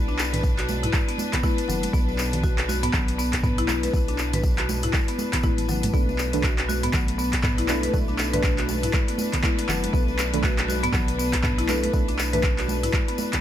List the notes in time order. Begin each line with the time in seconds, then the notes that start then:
Already playing: B1 D4 B4
0.08 D4, tambourine, muted conga
0.19 clap, tambourine
0.33 B4, closed hi-hat, mid tom, tambourine, low conga
0.43 kick, tambourine, muted conga
0.58 F#4, clap, closed hi-hat, tambourine
0.69 tambourine, high conga
0.83 E4, closed hi-hat, mid tom, tambourine, muted conga
0.94 kick, clap, tambourine, high conga
1.08 B3, closed hi-hat, tambourine
1.18 tambourine, high conga
1.33 B3, kick, clap, closed hi-hat, tambourine, muted conga, low conga
1.43 E4, kick, tambourine, high conga
1.58 closed hi-hat, tambourine
1.68 F#1 F#3, tambourine, muted conga, low conga
1.83 closed hi-hat, tambourine, high conga
1.93 B1 B3, kick, tambourine, high conga
2.08 tambourine, muted conga
2.18 clap, tambourine
2.33 closed hi-hat, tambourine, low conga
2.43 F#4, kick, tambourine, muted conga
2.58 clap, closed hi-hat, tambourine
2.69 F#4, tambourine, high conga
2.83 B3, closed hi-hat, mid tom, tambourine, muted conga
2.93 B1 F#3, kick, clap, tambourine, low conga
3.08 closed hi-hat, tambourine
3.19 B3, tambourine
3.33 kick, clap, closed hi-hat, tambourine, muted conga
3.43 B3, kick, mid tom, tambourine
3.58 E4, closed hi-hat, tambourine
3.68 clap, tambourine, muted conga, high conga
3.83 B4, closed hi-hat, tambourine, high conga
3.94 B1, kick, tambourine, high conga
4.08 D4, closed hi-hat, tambourine, muted conga
4.18 clap, tambourine
4.33 B4, closed hi-hat, mid tom, tambourine, low conga
4.43 kick, tambourine, muted conga
4.58 F#4, clap, closed hi-hat, tambourine
4.69 tambourine, high conga
4.83 E4, closed hi-hat, mid tom, tambourine, muted conga
4.93 kick, clap, tambourine, high conga
5.08 B3, closed hi-hat, tambourine
5.18 tambourine, high conga
5.33 B3, kick, clap, closed hi-hat, tambourine, muted conga, low conga
5.43 A1 E4, kick, tambourine, high conga
5.58 closed hi-hat, high tom, tambourine
5.68 F#3, mid tom, tambourine, muted conga, low conga
5.83 closed hi-hat, mid tom, tambourine, high conga
5.93 B1 A3 B3 D4 B4, kick, tambourine
6.09 tambourine, muted conga
6.18 clap, tambourine
6.33 A3 D4 B4, closed hi-hat, tambourine, low conga
6.43 F#4, kick, clap, tambourine, muted conga
6.58 clap, closed hi-hat, tambourine
6.69 F#4, tambourine, high conga
6.83 B3, closed hi-hat, mid tom, tambourine, muted conga
6.93 F#3, kick, clap, tambourine, low conga
7.08 closed hi-hat, tambourine
7.18 B3, tambourine
7.33 kick, clap, closed hi-hat, tambourine, muted conga
7.43 B3, kick, clap, mid tom, tambourine
7.58 E4, closed hi-hat, tambourine
7.68 A3 D4 B4, clap, tambourine, muted conga, high conga
7.83 B4, closed hi-hat, tambourine, high conga
7.93 B1 A3 D4 B4, kick, tambourine, high conga
8.08 D4, tambourine, muted conga
8.19 clap, tambourine
8.33 A3 D4 B4, closed hi-hat, mid tom, tambourine, low conga
8.43 kick, clap, tambourine, muted conga
8.58 F#4, clap, closed hi-hat, tambourine
8.69 tambourine, high conga
8.82 E4, closed hi-hat, mid tom, tambourine, muted conga
8.93 kick, clap, tambourine, high conga
9.08 B3, closed hi-hat, tambourine
9.18 tambourine, high conga
9.33 B3, kick, clap, closed hi-hat, tambourine, muted conga, low conga
9.43 E4, kick, clap, tambourine, high conga
9.58 closed hi-hat, tambourine
9.69 F#1 F#3, clap, tambourine, muted conga, low conga
9.83 closed hi-hat, tambourine, high conga
9.93 B1 A3 B3 D4 B4, kick, tambourine, high conga
10.08 tambourine, muted conga
10.19 clap, tambourine
10.34 A3 D4 B4, closed hi-hat, tambourine, low conga
10.43 F#4, kick, clap, tambourine, muted conga
10.58 clap, closed hi-hat, tambourine
10.68 F#4, tambourine, high conga
10.83 B3, closed hi-hat, mid tom, tambourine, muted conga
10.93 B1 F#3, kick, clap, tambourine, low conga
11.08 closed hi-hat, tambourine
11.19 B3, tambourine
11.33 kick, clap, closed hi-hat, tambourine, muted conga
11.43 B3, kick, clap, mid tom, tambourine
11.58 E4, closed hi-hat, tambourine
11.69 A3 D4 B4, clap, tambourine, muted conga, high conga
11.83 B4, closed hi-hat, tambourine, high conga
11.93 B1 A3 D4 B4, kick, tambourine, high conga
12.08 D4, closed hi-hat, tambourine, muted conga
12.19 clap, tambourine
12.33 A3 D4 B4, closed hi-hat, mid tom, tambourine, low conga
12.42 kick, clap, tambourine, muted conga
12.58 F#4, clap, closed hi-hat, tambourine
12.68 tambourine, high conga
12.83 E4, closed hi-hat, mid tom, tambourine, muted conga
12.93 kick, clap, tambourine, high conga
13.08 B3, closed hi-hat, tambourine
13.18 tambourine, high conga
13.33 B3, kick, clap, closed hi-hat, tambourine, muted conga, low conga